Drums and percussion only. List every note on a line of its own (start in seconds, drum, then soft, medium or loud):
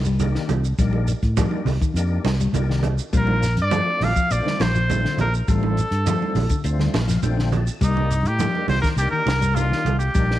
0.05 shekere medium
0.20 closed hi-hat medium
0.20 high conga medium
0.20 low conga medium
0.20 shekere medium
0.35 snare soft
0.49 closed hi-hat medium
0.49 high conga medium
0.49 low conga medium
0.49 shekere soft
0.64 shekere medium
0.79 kick medium
0.79 closed hi-hat medium
0.79 shekere medium
0.93 high conga medium
1.07 closed hi-hat soft
1.07 shekere medium
1.22 kick medium
1.22 closed hi-hat soft
1.22 shekere soft
1.37 kick medium
1.37 closed hi-hat medium
1.37 high conga medium
1.37 low conga medium
1.37 shekere medium
1.51 high conga medium
1.66 open hi-hat medium
1.66 high conga medium
1.66 low conga medium
1.66 shekere soft
1.81 kick medium
1.81 closed hi-hat soft
1.81 shekere medium
1.96 closed hi-hat medium
1.96 shekere medium
2.25 snare medium
2.25 closed hi-hat soft
2.25 high conga medium
2.25 shekere soft
2.40 closed hi-hat medium
2.40 shekere medium
2.54 closed hi-hat medium
2.54 high conga medium
2.54 low conga medium
2.54 shekere medium
2.70 snare soft
2.83 closed hi-hat medium
2.83 low conga medium
2.83 shekere soft
2.98 shekere medium
3.13 kick medium
3.13 closed hi-hat medium
3.13 shekere medium
3.27 high conga medium
3.43 snare soft
3.43 closed hi-hat soft
3.43 shekere medium
3.57 closed hi-hat soft
3.57 shekere soft
3.71 closed hi-hat medium
3.71 high conga medium
3.71 low conga medium
3.71 shekere medium
4.01 open hi-hat medium
4.01 high conga medium
4.01 low conga medium
4.01 shekere soft
4.16 kick medium
4.16 closed hi-hat soft
4.16 shekere medium
4.31 closed hi-hat medium
4.31 shekere medium
4.46 snare soft
4.46 high conga medium
4.60 snare medium
4.60 closed hi-hat soft
4.60 high conga medium
4.60 shekere soft
4.75 shekere medium
4.90 closed hi-hat medium
4.90 high conga medium
4.90 low conga medium
4.90 shekere medium
5.05 snare soft
5.18 closed hi-hat soft
5.18 low conga medium
5.18 shekere soft
5.34 shekere medium
5.48 kick medium
5.48 closed hi-hat medium
5.48 shekere medium
5.63 high conga medium
5.77 closed hi-hat soft
5.77 shekere medium
5.92 closed hi-hat medium
5.92 shekere soft
6.06 closed hi-hat medium
6.06 high conga loud
6.06 low conga medium
6.06 shekere medium
6.22 high conga medium
6.35 open hi-hat medium
6.35 high conga medium
6.35 low conga medium
6.35 shekere soft
6.49 kick medium
6.49 closed hi-hat soft
6.49 shekere medium
6.64 closed hi-hat medium
6.64 shekere medium
6.80 snare soft
6.80 high conga medium
6.94 snare medium
6.94 closed hi-hat soft
6.94 high conga medium
6.94 shekere soft
7.08 snare soft
7.08 closed hi-hat medium
7.08 shekere medium
7.23 closed hi-hat medium
7.23 high conga medium
7.23 shekere medium
7.39 snare soft
7.52 closed hi-hat medium
7.52 low conga medium
7.52 shekere soft
7.67 shekere medium
7.81 kick medium
7.81 closed hi-hat medium
7.81 shekere medium
7.97 high conga medium
8.11 closed hi-hat soft
8.11 shekere medium
8.25 closed hi-hat medium
8.25 shekere soft
8.39 closed hi-hat medium
8.39 high conga medium
8.39 low conga medium
8.39 shekere medium
8.55 high conga medium
8.68 open hi-hat medium
8.68 high conga medium
8.68 low conga medium
8.68 shekere soft
8.84 kick medium
8.84 snare soft
8.84 closed hi-hat soft
8.84 shekere medium
8.98 closed hi-hat medium
8.98 shekere medium
9.27 snare medium
9.27 closed hi-hat soft
9.27 high conga medium
9.27 shekere soft
9.42 shekere medium
9.56 closed hi-hat medium
9.56 high conga medium
9.56 shekere medium
9.72 snare soft
9.86 closed hi-hat soft
9.86 high conga medium
9.86 low conga medium
9.86 shekere soft
10.00 shekere medium
10.15 kick medium
10.15 closed hi-hat medium
10.15 shekere medium
10.31 snare soft